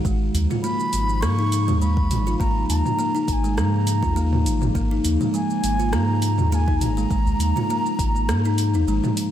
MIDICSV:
0, 0, Header, 1, 7, 480
1, 0, Start_track
1, 0, Tempo, 588235
1, 39, Time_signature, 4, 2, 24, 8
1, 7599, End_track
2, 0, Start_track
2, 0, Title_t, "Bansuri"
2, 0, Program_c, 0, 73
2, 513, Note_on_c, 0, 83, 111
2, 990, Note_on_c, 0, 85, 125
2, 1003, Note_off_c, 0, 83, 0
2, 1471, Note_off_c, 0, 85, 0
2, 1476, Note_on_c, 0, 83, 100
2, 1925, Note_off_c, 0, 83, 0
2, 1953, Note_on_c, 0, 82, 106
2, 2179, Note_off_c, 0, 82, 0
2, 2194, Note_on_c, 0, 82, 107
2, 2681, Note_off_c, 0, 82, 0
2, 2681, Note_on_c, 0, 82, 81
2, 2714, Note_on_c, 0, 80, 88
2, 2722, Note_off_c, 0, 82, 0
2, 2916, Note_on_c, 0, 82, 93
2, 2928, Note_off_c, 0, 80, 0
2, 3637, Note_off_c, 0, 82, 0
2, 4363, Note_on_c, 0, 80, 108
2, 4842, Note_on_c, 0, 82, 112
2, 4854, Note_off_c, 0, 80, 0
2, 5313, Note_off_c, 0, 82, 0
2, 5313, Note_on_c, 0, 82, 93
2, 5342, Note_on_c, 0, 80, 101
2, 5350, Note_off_c, 0, 82, 0
2, 5558, Note_on_c, 0, 82, 118
2, 5570, Note_off_c, 0, 80, 0
2, 7478, Note_off_c, 0, 82, 0
2, 7599, End_track
3, 0, Start_track
3, 0, Title_t, "Kalimba"
3, 0, Program_c, 1, 108
3, 45, Note_on_c, 1, 56, 82
3, 399, Note_off_c, 1, 56, 0
3, 415, Note_on_c, 1, 65, 74
3, 511, Note_off_c, 1, 65, 0
3, 522, Note_on_c, 1, 58, 98
3, 644, Note_off_c, 1, 58, 0
3, 999, Note_on_c, 1, 58, 102
3, 1123, Note_off_c, 1, 58, 0
3, 1132, Note_on_c, 1, 63, 71
3, 1357, Note_off_c, 1, 63, 0
3, 1372, Note_on_c, 1, 56, 79
3, 1472, Note_off_c, 1, 56, 0
3, 1482, Note_on_c, 1, 56, 88
3, 1838, Note_off_c, 1, 56, 0
3, 1852, Note_on_c, 1, 65, 80
3, 1949, Note_off_c, 1, 65, 0
3, 1963, Note_on_c, 1, 58, 103
3, 2085, Note_off_c, 1, 58, 0
3, 2437, Note_on_c, 1, 58, 98
3, 2561, Note_off_c, 1, 58, 0
3, 2567, Note_on_c, 1, 63, 72
3, 2795, Note_off_c, 1, 63, 0
3, 2809, Note_on_c, 1, 56, 76
3, 2908, Note_off_c, 1, 56, 0
3, 2918, Note_on_c, 1, 56, 80
3, 3275, Note_off_c, 1, 56, 0
3, 3285, Note_on_c, 1, 65, 74
3, 3386, Note_off_c, 1, 65, 0
3, 3396, Note_on_c, 1, 58, 105
3, 3521, Note_off_c, 1, 58, 0
3, 3878, Note_on_c, 1, 58, 106
3, 4002, Note_off_c, 1, 58, 0
3, 4009, Note_on_c, 1, 63, 77
3, 4236, Note_off_c, 1, 63, 0
3, 4250, Note_on_c, 1, 56, 77
3, 4347, Note_off_c, 1, 56, 0
3, 4357, Note_on_c, 1, 56, 85
3, 4715, Note_off_c, 1, 56, 0
3, 4730, Note_on_c, 1, 65, 77
3, 4828, Note_off_c, 1, 65, 0
3, 4840, Note_on_c, 1, 58, 103
3, 4963, Note_off_c, 1, 58, 0
3, 5324, Note_on_c, 1, 58, 109
3, 5445, Note_off_c, 1, 58, 0
3, 5450, Note_on_c, 1, 63, 76
3, 5677, Note_off_c, 1, 63, 0
3, 5689, Note_on_c, 1, 56, 80
3, 5793, Note_off_c, 1, 56, 0
3, 5802, Note_on_c, 1, 56, 85
3, 6158, Note_off_c, 1, 56, 0
3, 6177, Note_on_c, 1, 65, 77
3, 6272, Note_off_c, 1, 65, 0
3, 6286, Note_on_c, 1, 58, 100
3, 6406, Note_off_c, 1, 58, 0
3, 6765, Note_on_c, 1, 58, 100
3, 6885, Note_off_c, 1, 58, 0
3, 6899, Note_on_c, 1, 63, 74
3, 6993, Note_off_c, 1, 63, 0
3, 7139, Note_on_c, 1, 63, 75
3, 7238, Note_off_c, 1, 63, 0
3, 7248, Note_on_c, 1, 56, 85
3, 7367, Note_off_c, 1, 56, 0
3, 7599, End_track
4, 0, Start_track
4, 0, Title_t, "Ambient pad"
4, 0, Program_c, 2, 92
4, 0, Note_on_c, 2, 63, 103
4, 36, Note_on_c, 2, 53, 83
4, 38, Note_on_c, 2, 49, 97
4, 38, Note_on_c, 2, 58, 84
4, 7599, Note_off_c, 2, 49, 0
4, 7599, Note_off_c, 2, 53, 0
4, 7599, Note_off_c, 2, 58, 0
4, 7599, Note_off_c, 2, 63, 0
4, 7599, End_track
5, 0, Start_track
5, 0, Title_t, "Sub bass"
5, 0, Program_c, 3, 38
5, 40, Note_on_c, 3, 32, 97
5, 241, Note_off_c, 3, 32, 0
5, 279, Note_on_c, 3, 39, 95
5, 386, Note_off_c, 3, 39, 0
5, 762, Note_on_c, 3, 32, 85
5, 999, Note_on_c, 3, 44, 91
5, 1011, Note_off_c, 3, 32, 0
5, 1372, Note_on_c, 3, 39, 89
5, 1384, Note_off_c, 3, 44, 0
5, 1720, Note_on_c, 3, 32, 84
5, 1732, Note_off_c, 3, 39, 0
5, 1921, Note_off_c, 3, 32, 0
5, 1959, Note_on_c, 3, 32, 96
5, 2160, Note_off_c, 3, 32, 0
5, 2197, Note_on_c, 3, 39, 88
5, 2305, Note_off_c, 3, 39, 0
5, 2677, Note_on_c, 3, 32, 79
5, 2917, Note_on_c, 3, 44, 97
5, 2929, Note_off_c, 3, 32, 0
5, 3286, Note_on_c, 3, 39, 97
5, 3298, Note_off_c, 3, 44, 0
5, 3636, Note_on_c, 3, 32, 87
5, 3648, Note_off_c, 3, 39, 0
5, 3839, Note_off_c, 3, 32, 0
5, 3875, Note_on_c, 3, 32, 95
5, 4078, Note_off_c, 3, 32, 0
5, 4119, Note_on_c, 3, 39, 92
5, 4226, Note_off_c, 3, 39, 0
5, 4599, Note_on_c, 3, 32, 82
5, 4839, Note_on_c, 3, 44, 97
5, 4851, Note_off_c, 3, 32, 0
5, 5207, Note_on_c, 3, 39, 91
5, 5219, Note_off_c, 3, 44, 0
5, 5560, Note_on_c, 3, 32, 78
5, 5572, Note_off_c, 3, 39, 0
5, 5761, Note_off_c, 3, 32, 0
5, 5800, Note_on_c, 3, 32, 93
5, 6001, Note_off_c, 3, 32, 0
5, 6035, Note_on_c, 3, 39, 92
5, 6144, Note_off_c, 3, 39, 0
5, 6519, Note_on_c, 3, 32, 85
5, 6759, Note_on_c, 3, 44, 97
5, 6771, Note_off_c, 3, 32, 0
5, 7129, Note_on_c, 3, 39, 94
5, 7142, Note_off_c, 3, 44, 0
5, 7220, Note_off_c, 3, 39, 0
5, 7240, Note_on_c, 3, 32, 109
5, 7347, Note_off_c, 3, 32, 0
5, 7599, End_track
6, 0, Start_track
6, 0, Title_t, "Udu"
6, 280, Note_on_c, 9, 64, 86
6, 362, Note_off_c, 9, 64, 0
6, 4120, Note_on_c, 9, 64, 75
6, 4202, Note_off_c, 9, 64, 0
6, 5928, Note_on_c, 9, 64, 70
6, 6010, Note_off_c, 9, 64, 0
6, 7599, End_track
7, 0, Start_track
7, 0, Title_t, "Drums"
7, 39, Note_on_c, 9, 36, 111
7, 43, Note_on_c, 9, 82, 47
7, 121, Note_off_c, 9, 36, 0
7, 124, Note_off_c, 9, 82, 0
7, 283, Note_on_c, 9, 46, 90
7, 285, Note_on_c, 9, 82, 79
7, 365, Note_off_c, 9, 46, 0
7, 366, Note_off_c, 9, 82, 0
7, 413, Note_on_c, 9, 45, 64
7, 415, Note_on_c, 9, 82, 32
7, 495, Note_off_c, 9, 45, 0
7, 497, Note_off_c, 9, 82, 0
7, 524, Note_on_c, 9, 82, 41
7, 605, Note_off_c, 9, 82, 0
7, 653, Note_on_c, 9, 82, 28
7, 734, Note_off_c, 9, 82, 0
7, 758, Note_on_c, 9, 46, 77
7, 759, Note_on_c, 9, 82, 73
7, 839, Note_off_c, 9, 46, 0
7, 841, Note_off_c, 9, 82, 0
7, 891, Note_on_c, 9, 82, 33
7, 973, Note_off_c, 9, 82, 0
7, 1001, Note_on_c, 9, 37, 75
7, 1003, Note_on_c, 9, 82, 48
7, 1083, Note_off_c, 9, 37, 0
7, 1085, Note_off_c, 9, 82, 0
7, 1242, Note_on_c, 9, 46, 86
7, 1244, Note_on_c, 9, 82, 76
7, 1324, Note_off_c, 9, 46, 0
7, 1326, Note_off_c, 9, 82, 0
7, 1372, Note_on_c, 9, 45, 79
7, 1374, Note_on_c, 9, 82, 34
7, 1454, Note_off_c, 9, 45, 0
7, 1456, Note_off_c, 9, 82, 0
7, 1483, Note_on_c, 9, 82, 43
7, 1565, Note_off_c, 9, 82, 0
7, 1607, Note_on_c, 9, 36, 107
7, 1689, Note_off_c, 9, 36, 0
7, 1720, Note_on_c, 9, 45, 76
7, 1720, Note_on_c, 9, 46, 89
7, 1722, Note_on_c, 9, 82, 79
7, 1802, Note_off_c, 9, 45, 0
7, 1802, Note_off_c, 9, 46, 0
7, 1804, Note_off_c, 9, 82, 0
7, 1853, Note_on_c, 9, 82, 36
7, 1935, Note_off_c, 9, 82, 0
7, 1956, Note_on_c, 9, 36, 108
7, 1966, Note_on_c, 9, 82, 45
7, 2038, Note_off_c, 9, 36, 0
7, 2047, Note_off_c, 9, 82, 0
7, 2202, Note_on_c, 9, 46, 93
7, 2204, Note_on_c, 9, 82, 75
7, 2283, Note_off_c, 9, 46, 0
7, 2285, Note_off_c, 9, 82, 0
7, 2331, Note_on_c, 9, 45, 65
7, 2333, Note_on_c, 9, 82, 34
7, 2413, Note_off_c, 9, 45, 0
7, 2415, Note_off_c, 9, 82, 0
7, 2443, Note_on_c, 9, 82, 44
7, 2525, Note_off_c, 9, 82, 0
7, 2574, Note_on_c, 9, 82, 30
7, 2655, Note_off_c, 9, 82, 0
7, 2676, Note_on_c, 9, 36, 96
7, 2679, Note_on_c, 9, 46, 85
7, 2680, Note_on_c, 9, 82, 73
7, 2758, Note_off_c, 9, 36, 0
7, 2760, Note_off_c, 9, 46, 0
7, 2762, Note_off_c, 9, 82, 0
7, 2811, Note_on_c, 9, 82, 33
7, 2892, Note_off_c, 9, 82, 0
7, 2919, Note_on_c, 9, 37, 75
7, 2921, Note_on_c, 9, 82, 43
7, 3001, Note_off_c, 9, 37, 0
7, 3003, Note_off_c, 9, 82, 0
7, 3158, Note_on_c, 9, 46, 93
7, 3160, Note_on_c, 9, 82, 77
7, 3239, Note_off_c, 9, 46, 0
7, 3241, Note_off_c, 9, 82, 0
7, 3285, Note_on_c, 9, 36, 99
7, 3291, Note_on_c, 9, 82, 33
7, 3367, Note_off_c, 9, 36, 0
7, 3373, Note_off_c, 9, 82, 0
7, 3402, Note_on_c, 9, 82, 43
7, 3484, Note_off_c, 9, 82, 0
7, 3531, Note_on_c, 9, 45, 82
7, 3613, Note_off_c, 9, 45, 0
7, 3641, Note_on_c, 9, 46, 83
7, 3643, Note_on_c, 9, 82, 79
7, 3723, Note_off_c, 9, 46, 0
7, 3725, Note_off_c, 9, 82, 0
7, 3768, Note_on_c, 9, 45, 83
7, 3770, Note_on_c, 9, 82, 33
7, 3850, Note_off_c, 9, 45, 0
7, 3852, Note_off_c, 9, 82, 0
7, 3875, Note_on_c, 9, 36, 105
7, 3880, Note_on_c, 9, 82, 45
7, 3957, Note_off_c, 9, 36, 0
7, 3962, Note_off_c, 9, 82, 0
7, 4117, Note_on_c, 9, 46, 99
7, 4119, Note_on_c, 9, 82, 79
7, 4199, Note_off_c, 9, 46, 0
7, 4201, Note_off_c, 9, 82, 0
7, 4250, Note_on_c, 9, 45, 61
7, 4251, Note_on_c, 9, 82, 32
7, 4331, Note_off_c, 9, 45, 0
7, 4333, Note_off_c, 9, 82, 0
7, 4360, Note_on_c, 9, 82, 43
7, 4441, Note_off_c, 9, 82, 0
7, 4491, Note_on_c, 9, 82, 28
7, 4572, Note_off_c, 9, 82, 0
7, 4599, Note_on_c, 9, 46, 91
7, 4601, Note_on_c, 9, 82, 70
7, 4681, Note_off_c, 9, 46, 0
7, 4683, Note_off_c, 9, 82, 0
7, 4729, Note_on_c, 9, 82, 32
7, 4811, Note_off_c, 9, 82, 0
7, 4837, Note_on_c, 9, 37, 77
7, 4839, Note_on_c, 9, 82, 42
7, 4918, Note_off_c, 9, 37, 0
7, 4920, Note_off_c, 9, 82, 0
7, 5076, Note_on_c, 9, 46, 90
7, 5078, Note_on_c, 9, 82, 80
7, 5158, Note_off_c, 9, 46, 0
7, 5160, Note_off_c, 9, 82, 0
7, 5209, Note_on_c, 9, 45, 82
7, 5211, Note_on_c, 9, 82, 31
7, 5291, Note_off_c, 9, 45, 0
7, 5292, Note_off_c, 9, 82, 0
7, 5322, Note_on_c, 9, 82, 43
7, 5404, Note_off_c, 9, 82, 0
7, 5448, Note_on_c, 9, 36, 95
7, 5529, Note_off_c, 9, 36, 0
7, 5560, Note_on_c, 9, 45, 81
7, 5560, Note_on_c, 9, 46, 89
7, 5562, Note_on_c, 9, 82, 73
7, 5642, Note_off_c, 9, 45, 0
7, 5642, Note_off_c, 9, 46, 0
7, 5643, Note_off_c, 9, 82, 0
7, 5694, Note_on_c, 9, 82, 33
7, 5775, Note_off_c, 9, 82, 0
7, 5798, Note_on_c, 9, 36, 108
7, 5801, Note_on_c, 9, 82, 49
7, 5880, Note_off_c, 9, 36, 0
7, 5883, Note_off_c, 9, 82, 0
7, 5931, Note_on_c, 9, 82, 29
7, 6012, Note_off_c, 9, 82, 0
7, 6039, Note_on_c, 9, 46, 90
7, 6041, Note_on_c, 9, 82, 83
7, 6121, Note_off_c, 9, 46, 0
7, 6123, Note_off_c, 9, 82, 0
7, 6170, Note_on_c, 9, 45, 67
7, 6172, Note_on_c, 9, 82, 33
7, 6251, Note_off_c, 9, 45, 0
7, 6253, Note_off_c, 9, 82, 0
7, 6283, Note_on_c, 9, 82, 46
7, 6364, Note_off_c, 9, 82, 0
7, 6415, Note_on_c, 9, 82, 30
7, 6497, Note_off_c, 9, 82, 0
7, 6518, Note_on_c, 9, 36, 103
7, 6522, Note_on_c, 9, 46, 88
7, 6524, Note_on_c, 9, 82, 76
7, 6600, Note_off_c, 9, 36, 0
7, 6604, Note_off_c, 9, 46, 0
7, 6606, Note_off_c, 9, 82, 0
7, 6656, Note_on_c, 9, 82, 31
7, 6737, Note_off_c, 9, 82, 0
7, 6763, Note_on_c, 9, 37, 81
7, 6765, Note_on_c, 9, 82, 43
7, 6845, Note_off_c, 9, 37, 0
7, 6847, Note_off_c, 9, 82, 0
7, 6894, Note_on_c, 9, 82, 31
7, 6976, Note_off_c, 9, 82, 0
7, 7002, Note_on_c, 9, 46, 89
7, 7004, Note_on_c, 9, 82, 81
7, 7084, Note_off_c, 9, 46, 0
7, 7085, Note_off_c, 9, 82, 0
7, 7134, Note_on_c, 9, 82, 31
7, 7216, Note_off_c, 9, 82, 0
7, 7245, Note_on_c, 9, 82, 40
7, 7327, Note_off_c, 9, 82, 0
7, 7375, Note_on_c, 9, 45, 86
7, 7377, Note_on_c, 9, 82, 30
7, 7456, Note_off_c, 9, 45, 0
7, 7458, Note_off_c, 9, 82, 0
7, 7483, Note_on_c, 9, 46, 98
7, 7485, Note_on_c, 9, 82, 70
7, 7565, Note_off_c, 9, 46, 0
7, 7567, Note_off_c, 9, 82, 0
7, 7599, End_track
0, 0, End_of_file